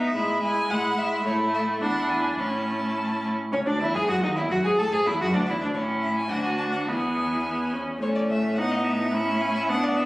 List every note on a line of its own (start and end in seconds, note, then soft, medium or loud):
0.00 0.15 B3 soft
0.00 0.15 D#4 soft
0.00 0.42 E5 medium
0.15 0.61 A2 soft
0.15 0.42 G#3 soft
0.15 0.42 E4 soft
0.42 0.70 G#3 soft
0.42 0.70 E4 soft
0.42 0.71 G#5 medium
0.70 1.17 A2 medium
0.70 0.97 G#3 soft
0.70 0.97 E4 soft
0.70 0.99 F#5 medium
0.98 1.25 G#3 soft
0.98 1.25 E4 soft
0.98 1.25 E5 medium
1.25 1.78 A2 soft
1.25 1.83 A3 medium
1.25 1.77 E4 soft
1.25 1.34 C#5 medium
1.54 1.62 E5 medium
1.81 2.37 E2 soft
1.81 2.40 D4 soft
1.81 2.37 E4 soft
1.81 2.11 F#5 medium
2.09 2.38 G#5 medium
2.38 3.31 A2 soft
2.38 3.32 C#4 soft
2.38 3.31 E4 soft
2.38 3.22 A5 soft
3.52 3.65 C#2 soft
3.52 3.58 C#4 soft
3.52 3.59 C#4 soft
3.52 3.58 C#5 medium
3.66 3.82 D2 soft
3.66 3.72 D4 soft
3.66 3.82 D4 soft
3.66 3.79 D5 medium
3.80 3.96 E2 medium
3.80 3.96 E4 medium
3.80 3.86 E5 medium
3.94 4.09 G#2 soft
3.94 4.11 G#4 soft
3.94 4.10 G#4 soft
3.94 4.07 G#5 medium
4.08 4.23 F#2 medium
4.08 4.24 F#4 medium
4.08 4.23 F#4 medium
4.08 4.22 F#5 medium
4.22 4.38 D#2 soft
4.22 4.37 D#4 soft
4.22 4.29 D#4 soft
4.22 4.28 D#5 soft
4.35 4.49 E2 medium
4.35 4.42 E4 soft
4.35 4.53 E4 medium
4.35 4.41 E5 medium
4.50 4.55 F#2 medium
4.50 4.67 F#4 medium
4.50 4.57 F#4 medium
4.50 4.63 F#5 medium
4.64 4.70 G#2 medium
4.64 4.80 G#4 medium
4.64 4.81 G#4 medium
4.64 4.69 G#5 medium
4.78 4.84 A2 medium
4.78 4.94 A4 medium
4.78 4.92 A4 medium
4.78 4.90 A5 medium
4.91 4.98 G#2 medium
4.91 5.08 G#4 medium
4.91 5.09 G#4 medium
4.91 4.97 G#5 medium
5.06 5.12 E2 medium
5.06 5.20 E4 medium
5.06 5.23 E4 medium
5.06 5.19 E5 medium
5.20 5.35 F#2 medium
5.20 5.34 F#4 medium
5.20 5.27 F#4 medium
5.20 5.35 F#5 medium
5.34 5.49 D2 medium
5.34 5.40 D4 medium
5.34 5.48 D4 medium
5.34 5.48 D5 medium
5.46 5.61 E2 medium
5.46 5.61 E4 medium
5.46 5.54 E4 medium
5.46 5.60 E5 medium
5.61 5.74 D2 medium
5.61 5.67 D4 soft
5.61 5.76 D4 medium
5.61 5.66 D5 medium
5.74 6.31 A2 medium
5.74 6.27 C#4 medium
5.74 6.27 E4 soft
5.74 5.82 C#5 medium
6.02 6.16 E5 medium
6.16 6.31 G#5 medium
6.30 6.88 D2 medium
6.30 6.89 D4 soft
6.30 6.89 F#4 soft
6.30 6.44 F#5 medium
6.44 6.50 G#5 medium
6.58 6.63 A5 medium
6.72 6.78 F#5 soft
6.86 7.81 E2 soft
6.86 7.39 B3 soft
6.86 7.82 E4 soft
6.86 7.71 G#5 medium
7.45 7.75 B3 soft
7.73 8.01 C#4 soft
8.02 10.06 A2 soft
8.02 8.59 A3 soft
8.02 8.60 C#4 soft
8.02 8.07 C#5 medium
8.15 8.21 D5 medium
8.29 8.57 E5 medium
8.57 9.16 B3 soft
8.57 9.14 D#4 soft
8.57 8.73 F#5 medium
8.71 8.86 D#5 medium
8.84 9.42 E5 medium
9.14 9.71 C#4 soft
9.14 9.72 E4 soft
9.41 9.55 G#5 medium
9.55 9.61 E5 medium
9.68 10.06 B3 medium
9.68 10.06 D4 medium
9.68 9.85 F#5 medium
9.83 9.98 D5 medium
9.96 10.06 E5 medium